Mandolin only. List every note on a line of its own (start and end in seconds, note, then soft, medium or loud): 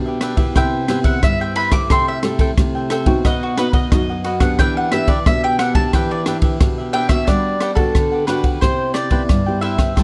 0.57 1.03 G5 medium
1.05 1.22 F#5 medium
1.24 1.40 E5 medium
1.41 1.56 G5 medium
1.56 1.72 B5 medium
1.72 1.89 D6 loud
1.91 2.07 C6 medium
2.08 2.18 E5 medium
3.25 3.41 D#5 medium
3.43 3.59 F#4 medium
3.58 3.73 B4 medium
3.74 3.91 D#5 medium
3.92 4.39 D#5 medium
4.41 4.58 F#5 medium
4.59 4.76 G5 loud
4.77 4.92 F#5 medium
4.92 5.09 E5 medium
5.08 5.25 D5 medium
5.27 5.43 E5 medium
5.44 5.59 G5 loud
5.59 5.75 F#5 medium
5.75 5.92 A5 loud
5.94 6.10 G5 medium
6.11 6.21 D5 medium
6.93 7.08 G5 loud
7.09 7.27 E5 medium
7.27 7.75 D5 loud
7.75 8.24 A4 medium
8.27 8.59 B4 medium
8.61 8.93 C5 medium
8.94 9.58 D5 medium
9.61 10.03 E5 medium